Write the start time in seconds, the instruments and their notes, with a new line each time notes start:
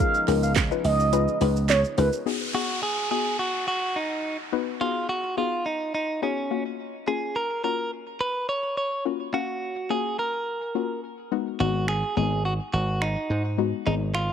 Already playing: supersaw synth C#3 F3 G#3 B3 D#4
0.00 synth pluck C#4 D#4 F4 G#4 A#4, analog synth lead F5, kick, closed hi-hat, shaker
0.14 shaker
0.28 slap bass C#2, synth pluck C#4 D#4 F4 G#4 A#4, clap, open hi-hat, shaker
0.43 analog synth lead F5, shaker
0.56 kick, snare, clap, closed hi-hat, shaker
0.71 synth pluck C#4 D#4 F4 G#4 B4, shaker
0.85 slap bass C#2, analog synth lead D#5, open hi-hat, shaker
1.00 shaker
1.13 synth pluck C#4 D#4 F4 G#4 B4, closed hi-hat, shaker
1.28 shaker
1.41 slap bass C#2, synth pluck C#4 D#4 F4 G#4 B4, open hi-hat, shaker
1.56 shaker
1.69 analog synth lead C#5, snare, clap, closed hi-hat, shaker
1.84 shaker
1.98 slap bass C#2, synth pluck C#4 D#4 F4 G#4 A#4, analog synth lead B4, open hi-hat, shaker
2.13 shaker
2.26 synth pluck B3 D#4 F#4 G#4, downlifter
2.54 synth pluck B3 D#4 F#4 G#4, clean electric guitar F#4
2.83 clean electric guitar G#4
3.11 synth pluck B3 D#4 F#4 G#4, clean electric guitar G#4
3.39 clean electric guitar F#4
3.68 clean electric guitar F#4
3.96 clean electric guitar D#4
4.52 synth pluck B3 D#4 F#4 B4
4.81 synth pluck B3 D#4 F#4 G#4, clean electric guitar F4
5.09 clean electric guitar F#4
5.37 synth pluck B3 D#4 F#4 G#4, clean electric guitar F4
5.66 clean electric guitar D#4
5.95 clean electric guitar D#4
6.22 synth pluck B3 D#4 F#4 G#4, clean electric guitar C#4
6.51 synth pluck A#3 C#4 F4 F#4
7.07 synth pluck A#3 C#4 F4 G#4, clean electric guitar G#4
7.36 clean electric guitar A#4
7.64 synth pluck A#3 C#4 F4 F#4, clean electric guitar A#4
8.21 clean electric guitar B4
8.49 clean electric guitar C#5
8.77 clean electric guitar C#5
9.05 synth pluck A#3 C#4 F4 F#4
9.34 synth pluck A#3 C#4 F#4 F5, clean electric guitar F#4
9.90 synth pluck A#3 C#4 F4 F#4, clean electric guitar G#4
10.19 clean electric guitar A#4
10.75 synth pluck A#3 C#4 F4 F#4
11.32 synth pluck G#3 B3 D#4 F#4
11.60 slap bass G#1, synth pluck G#3 B3 D#4 F#4, clean electric guitar F#4
11.88 clean electric guitar G#4, finger snap
12.17 slap bass G#1, synth pluck G#3 B3 D#4 F#4, clean electric guitar G#4
12.45 clean electric guitar F#4
12.73 slap bass G#1, clean electric guitar F#4
13.02 clean electric guitar D#4, finger snap
13.30 slap bass G#2
13.58 synth pluck G#3 B3 D#4 F#4
13.86 slap bass G#1, synth pluck G#3 B3 D#4 G#4, clean electric guitar D#4
14.15 clean electric guitar F4, finger snap